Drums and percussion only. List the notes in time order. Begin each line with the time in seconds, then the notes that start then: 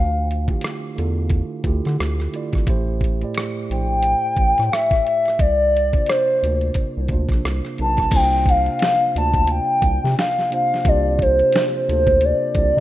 0.31 closed hi-hat
0.48 kick, closed hi-hat
0.61 cross-stick, closed hi-hat
0.98 closed hi-hat
1.30 kick, closed hi-hat
1.64 kick, closed hi-hat
1.85 cross-stick, closed hi-hat
2.00 cross-stick, closed hi-hat
2.20 cross-stick
2.34 closed hi-hat
2.53 kick, cross-stick, closed hi-hat
2.67 kick, closed hi-hat
3.01 kick, closed hi-hat
3.21 closed hi-hat
3.34 cross-stick, closed hi-hat
3.71 closed hi-hat
4.03 closed hi-hat
4.37 kick, closed hi-hat
4.58 cross-stick, closed hi-hat
4.73 cross-stick, closed hi-hat
4.91 kick, cross-stick
5.07 closed hi-hat
5.25 cross-stick, closed hi-hat
5.39 kick, closed hi-hat
5.77 closed hi-hat
5.93 kick, closed hi-hat
6.06 cross-stick, closed hi-hat
6.44 closed hi-hat
6.61 closed hi-hat
6.74 kick, closed hi-hat
7.08 kick, closed hi-hat
7.29 kick, cross-stick, closed hi-hat
7.45 cross-stick, closed hi-hat
7.65 cross-stick
7.78 closed hi-hat
7.97 kick, cross-stick, closed hi-hat
8.11 kick, closed hi-hat, crash
8.46 kick, closed hi-hat
8.66 closed hi-hat
8.79 snare, closed hi-hat
9.16 closed hi-hat
9.34 kick, closed hi-hat
9.47 closed hi-hat
9.82 kick, closed hi-hat
10.05 snare
10.19 snare, closed hi-hat
10.39 snare
10.52 closed hi-hat
10.74 snare
10.85 kick, closed hi-hat
11.19 kick, closed hi-hat
11.39 closed hi-hat
11.53 snare, closed hi-hat
11.89 closed hi-hat
12.07 kick, closed hi-hat
12.21 closed hi-hat
12.55 kick, closed hi-hat